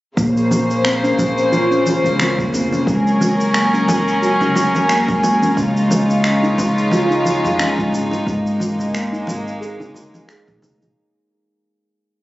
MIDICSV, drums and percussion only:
0, 0, Header, 1, 2, 480
1, 0, Start_track
1, 0, Key_signature, -5, "minor"
1, 0, Tempo, 674157
1, 124, Time_signature, 4, 2, 24, 8
1, 8706, End_track
2, 0, Start_track
2, 0, Title_t, "Drums"
2, 122, Note_on_c, 9, 36, 105
2, 129, Note_on_c, 9, 82, 39
2, 194, Note_off_c, 9, 36, 0
2, 200, Note_off_c, 9, 82, 0
2, 264, Note_on_c, 9, 82, 20
2, 335, Note_off_c, 9, 82, 0
2, 364, Note_on_c, 9, 63, 82
2, 370, Note_on_c, 9, 82, 71
2, 435, Note_off_c, 9, 63, 0
2, 441, Note_off_c, 9, 82, 0
2, 503, Note_on_c, 9, 82, 31
2, 575, Note_off_c, 9, 82, 0
2, 603, Note_on_c, 9, 26, 97
2, 610, Note_on_c, 9, 82, 39
2, 674, Note_off_c, 9, 26, 0
2, 681, Note_off_c, 9, 82, 0
2, 743, Note_on_c, 9, 82, 22
2, 814, Note_off_c, 9, 82, 0
2, 842, Note_on_c, 9, 36, 52
2, 847, Note_on_c, 9, 63, 33
2, 847, Note_on_c, 9, 82, 67
2, 849, Note_on_c, 9, 62, 60
2, 914, Note_off_c, 9, 36, 0
2, 918, Note_off_c, 9, 63, 0
2, 919, Note_off_c, 9, 82, 0
2, 921, Note_off_c, 9, 62, 0
2, 982, Note_on_c, 9, 82, 30
2, 1053, Note_off_c, 9, 82, 0
2, 1087, Note_on_c, 9, 63, 73
2, 1088, Note_on_c, 9, 82, 38
2, 1159, Note_off_c, 9, 63, 0
2, 1159, Note_off_c, 9, 82, 0
2, 1223, Note_on_c, 9, 82, 21
2, 1294, Note_off_c, 9, 82, 0
2, 1327, Note_on_c, 9, 63, 68
2, 1328, Note_on_c, 9, 82, 67
2, 1399, Note_off_c, 9, 63, 0
2, 1399, Note_off_c, 9, 82, 0
2, 1464, Note_on_c, 9, 82, 30
2, 1467, Note_on_c, 9, 62, 47
2, 1535, Note_off_c, 9, 82, 0
2, 1538, Note_off_c, 9, 62, 0
2, 1562, Note_on_c, 9, 63, 56
2, 1563, Note_on_c, 9, 26, 102
2, 1570, Note_on_c, 9, 82, 43
2, 1634, Note_off_c, 9, 26, 0
2, 1634, Note_off_c, 9, 63, 0
2, 1641, Note_off_c, 9, 82, 0
2, 1698, Note_on_c, 9, 36, 101
2, 1707, Note_on_c, 9, 82, 21
2, 1769, Note_off_c, 9, 36, 0
2, 1778, Note_off_c, 9, 82, 0
2, 1806, Note_on_c, 9, 64, 83
2, 1810, Note_on_c, 9, 82, 71
2, 1877, Note_off_c, 9, 64, 0
2, 1881, Note_off_c, 9, 82, 0
2, 1941, Note_on_c, 9, 62, 46
2, 1947, Note_on_c, 9, 82, 28
2, 2012, Note_off_c, 9, 62, 0
2, 2018, Note_off_c, 9, 82, 0
2, 2043, Note_on_c, 9, 36, 106
2, 2052, Note_on_c, 9, 82, 39
2, 2114, Note_off_c, 9, 36, 0
2, 2123, Note_off_c, 9, 82, 0
2, 2187, Note_on_c, 9, 82, 22
2, 2258, Note_off_c, 9, 82, 0
2, 2285, Note_on_c, 9, 63, 74
2, 2292, Note_on_c, 9, 82, 78
2, 2356, Note_off_c, 9, 63, 0
2, 2363, Note_off_c, 9, 82, 0
2, 2426, Note_on_c, 9, 82, 31
2, 2497, Note_off_c, 9, 82, 0
2, 2523, Note_on_c, 9, 26, 101
2, 2530, Note_on_c, 9, 82, 43
2, 2594, Note_off_c, 9, 26, 0
2, 2602, Note_off_c, 9, 82, 0
2, 2666, Note_on_c, 9, 82, 23
2, 2738, Note_off_c, 9, 82, 0
2, 2766, Note_on_c, 9, 62, 70
2, 2770, Note_on_c, 9, 63, 35
2, 2772, Note_on_c, 9, 82, 75
2, 2837, Note_off_c, 9, 62, 0
2, 2842, Note_off_c, 9, 63, 0
2, 2844, Note_off_c, 9, 82, 0
2, 2905, Note_on_c, 9, 82, 33
2, 2977, Note_off_c, 9, 82, 0
2, 3012, Note_on_c, 9, 82, 41
2, 3083, Note_off_c, 9, 82, 0
2, 3139, Note_on_c, 9, 62, 33
2, 3139, Note_on_c, 9, 64, 90
2, 3146, Note_on_c, 9, 82, 22
2, 3210, Note_off_c, 9, 62, 0
2, 3211, Note_off_c, 9, 64, 0
2, 3217, Note_off_c, 9, 82, 0
2, 3241, Note_on_c, 9, 64, 96
2, 3252, Note_on_c, 9, 82, 77
2, 3313, Note_off_c, 9, 64, 0
2, 3323, Note_off_c, 9, 82, 0
2, 3380, Note_on_c, 9, 63, 72
2, 3386, Note_on_c, 9, 82, 33
2, 3451, Note_off_c, 9, 63, 0
2, 3457, Note_off_c, 9, 82, 0
2, 3484, Note_on_c, 9, 26, 99
2, 3492, Note_on_c, 9, 82, 45
2, 3556, Note_off_c, 9, 26, 0
2, 3563, Note_off_c, 9, 82, 0
2, 3620, Note_on_c, 9, 36, 103
2, 3621, Note_on_c, 9, 62, 50
2, 3626, Note_on_c, 9, 82, 21
2, 3691, Note_off_c, 9, 36, 0
2, 3692, Note_off_c, 9, 62, 0
2, 3697, Note_off_c, 9, 82, 0
2, 3727, Note_on_c, 9, 62, 63
2, 3730, Note_on_c, 9, 82, 76
2, 3798, Note_off_c, 9, 62, 0
2, 3801, Note_off_c, 9, 82, 0
2, 3860, Note_on_c, 9, 63, 60
2, 3866, Note_on_c, 9, 82, 32
2, 3931, Note_off_c, 9, 63, 0
2, 3937, Note_off_c, 9, 82, 0
2, 3965, Note_on_c, 9, 36, 117
2, 3971, Note_on_c, 9, 82, 42
2, 4037, Note_off_c, 9, 36, 0
2, 4042, Note_off_c, 9, 82, 0
2, 4107, Note_on_c, 9, 82, 24
2, 4179, Note_off_c, 9, 82, 0
2, 4207, Note_on_c, 9, 63, 82
2, 4210, Note_on_c, 9, 82, 81
2, 4278, Note_off_c, 9, 63, 0
2, 4281, Note_off_c, 9, 82, 0
2, 4346, Note_on_c, 9, 82, 30
2, 4417, Note_off_c, 9, 82, 0
2, 4443, Note_on_c, 9, 26, 98
2, 4450, Note_on_c, 9, 82, 47
2, 4514, Note_off_c, 9, 26, 0
2, 4521, Note_off_c, 9, 82, 0
2, 4586, Note_on_c, 9, 82, 22
2, 4657, Note_off_c, 9, 82, 0
2, 4686, Note_on_c, 9, 36, 61
2, 4687, Note_on_c, 9, 62, 61
2, 4690, Note_on_c, 9, 63, 33
2, 4692, Note_on_c, 9, 82, 82
2, 4758, Note_off_c, 9, 36, 0
2, 4759, Note_off_c, 9, 62, 0
2, 4761, Note_off_c, 9, 63, 0
2, 4763, Note_off_c, 9, 82, 0
2, 4828, Note_on_c, 9, 82, 34
2, 4899, Note_off_c, 9, 82, 0
2, 4923, Note_on_c, 9, 63, 83
2, 4932, Note_on_c, 9, 82, 40
2, 4994, Note_off_c, 9, 63, 0
2, 5004, Note_off_c, 9, 82, 0
2, 5067, Note_on_c, 9, 82, 23
2, 5138, Note_off_c, 9, 82, 0
2, 5161, Note_on_c, 9, 63, 64
2, 5173, Note_on_c, 9, 82, 73
2, 5232, Note_off_c, 9, 63, 0
2, 5244, Note_off_c, 9, 82, 0
2, 5301, Note_on_c, 9, 62, 44
2, 5308, Note_on_c, 9, 82, 36
2, 5373, Note_off_c, 9, 62, 0
2, 5379, Note_off_c, 9, 82, 0
2, 5404, Note_on_c, 9, 63, 60
2, 5407, Note_on_c, 9, 26, 102
2, 5414, Note_on_c, 9, 82, 44
2, 5475, Note_off_c, 9, 63, 0
2, 5479, Note_off_c, 9, 26, 0
2, 5486, Note_off_c, 9, 82, 0
2, 5541, Note_on_c, 9, 36, 96
2, 5551, Note_on_c, 9, 82, 22
2, 5612, Note_off_c, 9, 36, 0
2, 5622, Note_off_c, 9, 82, 0
2, 5642, Note_on_c, 9, 64, 77
2, 5655, Note_on_c, 9, 82, 72
2, 5713, Note_off_c, 9, 64, 0
2, 5726, Note_off_c, 9, 82, 0
2, 5777, Note_on_c, 9, 62, 45
2, 5789, Note_on_c, 9, 82, 32
2, 5848, Note_off_c, 9, 62, 0
2, 5860, Note_off_c, 9, 82, 0
2, 5886, Note_on_c, 9, 36, 107
2, 5895, Note_on_c, 9, 82, 41
2, 5957, Note_off_c, 9, 36, 0
2, 5966, Note_off_c, 9, 82, 0
2, 6029, Note_on_c, 9, 82, 23
2, 6100, Note_off_c, 9, 82, 0
2, 6123, Note_on_c, 9, 63, 70
2, 6135, Note_on_c, 9, 82, 80
2, 6195, Note_off_c, 9, 63, 0
2, 6206, Note_off_c, 9, 82, 0
2, 6258, Note_on_c, 9, 64, 72
2, 6269, Note_on_c, 9, 82, 32
2, 6329, Note_off_c, 9, 64, 0
2, 6340, Note_off_c, 9, 82, 0
2, 6369, Note_on_c, 9, 26, 96
2, 6376, Note_on_c, 9, 82, 46
2, 6440, Note_off_c, 9, 26, 0
2, 6447, Note_off_c, 9, 82, 0
2, 6508, Note_on_c, 9, 82, 23
2, 6580, Note_off_c, 9, 82, 0
2, 6600, Note_on_c, 9, 63, 32
2, 6602, Note_on_c, 9, 62, 60
2, 6614, Note_on_c, 9, 82, 80
2, 6671, Note_off_c, 9, 63, 0
2, 6673, Note_off_c, 9, 62, 0
2, 6686, Note_off_c, 9, 82, 0
2, 6748, Note_on_c, 9, 82, 35
2, 6819, Note_off_c, 9, 82, 0
2, 6854, Note_on_c, 9, 82, 44
2, 6925, Note_off_c, 9, 82, 0
2, 6978, Note_on_c, 9, 64, 78
2, 6984, Note_on_c, 9, 62, 33
2, 6988, Note_on_c, 9, 82, 23
2, 7049, Note_off_c, 9, 64, 0
2, 7055, Note_off_c, 9, 62, 0
2, 7059, Note_off_c, 9, 82, 0
2, 7080, Note_on_c, 9, 64, 91
2, 7092, Note_on_c, 9, 82, 80
2, 7151, Note_off_c, 9, 64, 0
2, 7163, Note_off_c, 9, 82, 0
2, 7219, Note_on_c, 9, 63, 77
2, 7225, Note_on_c, 9, 82, 36
2, 7290, Note_off_c, 9, 63, 0
2, 7296, Note_off_c, 9, 82, 0
2, 7324, Note_on_c, 9, 26, 96
2, 7332, Note_on_c, 9, 82, 48
2, 7396, Note_off_c, 9, 26, 0
2, 7403, Note_off_c, 9, 82, 0
2, 7458, Note_on_c, 9, 36, 100
2, 7461, Note_on_c, 9, 62, 48
2, 7465, Note_on_c, 9, 82, 20
2, 7530, Note_off_c, 9, 36, 0
2, 7533, Note_off_c, 9, 62, 0
2, 7536, Note_off_c, 9, 82, 0
2, 7563, Note_on_c, 9, 62, 66
2, 7571, Note_on_c, 9, 82, 74
2, 7635, Note_off_c, 9, 62, 0
2, 7642, Note_off_c, 9, 82, 0
2, 7705, Note_on_c, 9, 63, 61
2, 7706, Note_on_c, 9, 82, 33
2, 7776, Note_off_c, 9, 63, 0
2, 7778, Note_off_c, 9, 82, 0
2, 8706, End_track
0, 0, End_of_file